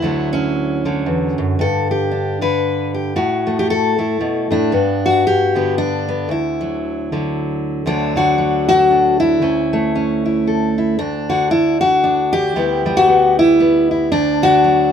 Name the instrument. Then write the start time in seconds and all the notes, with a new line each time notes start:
steel-string acoustic guitar
Already playing: E4
0.02 D2 D3 F#3 A3
0.33 C#4
0.85 D3 F#3
1.06 E2
1.38 F#2
1.59 G2 A4
1.91 G4
2.11 D4
2.41 D3 B4
2.94 G4
3.16 A2 F#4
3.47 A3
3.59 G4
3.70 A4
3.98 A3 E4
4.21 B2
4.51 A2 D4
4.72 G2 B3
5.06 F#4
5.27 G4
5.55 D3 B3
5.78 D4
6.09 B3
6.29 D2 E4
6.61 F#3
7.12 D3 F#3
7.86 D2 D3 F#3 A3 D4
8.16 D3 F#4
8.38 F#3
8.69 F#4
8.91 D4
9.20 E4
9.42 D2 C#4
9.73 A3
9.95 C#4
10.25 E4
10.47 A4
10.78 E4
10.99 D2 D4
11.29 D3 F#4
11.51 E4
11.81 F#4
12.04 D4
12.33 G4
12.56 D2 G3 B3 E4
12.86 G3
12.97 F#4
13.08 B3
13.39 E4
13.60 B3
13.91 E4
14.12 D2 D4
14.42 D3 F#4
14.64 F#3